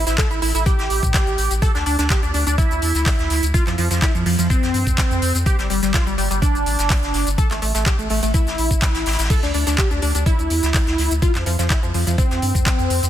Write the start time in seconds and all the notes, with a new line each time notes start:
0.07 A1 E4, snare, closed hi-hat, shaker
0.18 A4, kick, snare, clap, closed hi-hat, shaker
0.31 A1 E4, closed hi-hat, shaker
0.41 A1 E4, open hi-hat
0.55 A1 E4, closed hi-hat, shaker
0.66 G4, kick, closed hi-hat, shaker
0.79 A1, snare, closed hi-hat, shaker
0.90 A1, closed hi-hat, open hi-hat
1.03 A2, kick, closed hi-hat, shaker
1.14 kick, snare, clap, closed hi-hat, shaker
1.27 A1, closed hi-hat, shaker
1.38 A1, closed hi-hat, open hi-hat
1.51 A1, closed hi-hat, shaker
1.62 A4, kick, closed hi-hat, shaker
1.75 D2 D4, snare, closed hi-hat, shaker
1.86 D2 D4, closed hi-hat, open hi-hat
1.99 D2 D4, snare, closed hi-hat, shaker
2.10 G4, kick, snare, clap, closed hi-hat, shaker
2.23 D2 D4, closed hi-hat, shaker
2.34 D2 D4, closed hi-hat, open hi-hat
2.47 D2 D4, closed hi-hat, shaker
2.58 E4, kick, closed hi-hat, shaker
2.71 D2, closed hi-hat, shaker
2.82 E2, closed hi-hat, open hi-hat
2.95 D2, snare, closed hi-hat, shaker
3.06 kick, snare, clap, closed hi-hat, open hi-hat, shaker
3.19 D2, snare, closed hi-hat, shaker
3.30 D2, snare, closed hi-hat, open hi-hat
3.43 D2, closed hi-hat, shaker
3.54 F4, kick, closed hi-hat, shaker
3.67 F2 F3, snare, clap, closed hi-hat, shaker
3.78 F2 F3, closed hi-hat, open hi-hat
3.91 F2 F3, snare, closed hi-hat, shaker
4.02 E4, kick, snare, clap, closed hi-hat, shaker
4.15 F2 F3, closed hi-hat, shaker
4.26 F2 F3, open hi-hat
4.39 F2 F3, closed hi-hat, shaker
4.50 C4, kick, closed hi-hat, shaker
4.63 F2, snare, closed hi-hat, shaker
4.74 G2, closed hi-hat, open hi-hat
4.87 F2, kick, closed hi-hat, shaker
4.98 kick, snare, clap, closed hi-hat, shaker
5.11 F2, closed hi-hat, shaker
5.22 F2, closed hi-hat, open hi-hat
5.34 F2, closed hi-hat, shaker
5.46 G4, kick, closed hi-hat, shaker
5.59 G1 G3, snare, closed hi-hat, shaker
5.70 G1 G3, closed hi-hat, open hi-hat
5.83 G1 G3, snare, closed hi-hat, shaker
5.94 F4, kick, snare, clap, closed hi-hat, shaker
6.07 G1 G3, closed hi-hat, shaker
6.18 G1 G3, closed hi-hat, open hi-hat
6.31 G1 G3, closed hi-hat, shaker
6.42 D4, kick, closed hi-hat, shaker
6.55 G1, closed hi-hat, shaker
6.66 A1, closed hi-hat, open hi-hat
6.79 G1, snare, closed hi-hat, shaker
6.90 kick, snare, clap, closed hi-hat, open hi-hat, shaker
7.03 G1, snare, closed hi-hat, shaker
7.14 G1, snare, closed hi-hat, open hi-hat
7.27 G1, closed hi-hat, shaker
7.38 A4, kick, closed hi-hat, shaker
7.51 A1 A3, snare, clap, closed hi-hat, shaker
7.62 A1 A3, closed hi-hat, open hi-hat
7.75 A1 A3, snare, closed hi-hat, shaker
7.86 G4, kick, snare, clap, closed hi-hat, shaker
7.99 A1 A3, closed hi-hat, shaker
8.09 A1 A3, open hi-hat
8.23 A1 A3, closed hi-hat, shaker
8.34 E4, kick, closed hi-hat, shaker
8.47 A1, snare, closed hi-hat, shaker
8.58 A#1, closed hi-hat, open hi-hat
8.71 A1, kick, closed hi-hat, shaker
8.82 kick, snare, clap, closed hi-hat, shaker
8.94 A1, snare, closed hi-hat, shaker
9.06 A1, snare, closed hi-hat, open hi-hat
9.13 snare, closed hi-hat
9.19 A1, snare, closed hi-hat, shaker
9.24 snare, closed hi-hat
9.30 A4, kick, closed hi-hat, crash, shaker
9.43 D2 D4, snare, closed hi-hat, shaker
9.54 D2 D4, closed hi-hat, open hi-hat
9.66 D2 D4, snare, closed hi-hat, shaker
9.78 G4, kick, snare, clap, closed hi-hat, shaker
9.91 D2 D4, closed hi-hat, shaker
10.02 D2 D4, closed hi-hat, open hi-hat
10.15 D2 D4, closed hi-hat, shaker
10.26 E4, kick, closed hi-hat, shaker
10.39 D2, closed hi-hat, shaker
10.50 E2, closed hi-hat, open hi-hat
10.63 D2, snare, closed hi-hat, shaker
10.73 kick, snare, clap, closed hi-hat, open hi-hat, shaker
10.87 D2, snare, closed hi-hat, shaker
10.98 D2, snare, closed hi-hat, open hi-hat
11.11 D2, closed hi-hat, shaker
11.22 F4, kick, closed hi-hat, shaker
11.35 F2 F3, snare, clap, closed hi-hat, shaker
11.46 F2 F3, closed hi-hat, open hi-hat
11.59 F2 F3, snare, closed hi-hat, shaker
11.70 E4, kick, snare, clap, closed hi-hat, shaker
11.83 F2 F3, closed hi-hat, shaker
11.94 F2 F3, open hi-hat
12.07 F2 F3, closed hi-hat, shaker
12.18 C4, kick, closed hi-hat, shaker
12.31 F2, snare, closed hi-hat, shaker
12.42 G2, closed hi-hat, open hi-hat
12.55 F2, kick, closed hi-hat, shaker
12.66 kick, snare, clap, closed hi-hat, shaker
12.79 F2, closed hi-hat, shaker
12.90 F2, closed hi-hat, open hi-hat
13.03 F2, closed hi-hat, shaker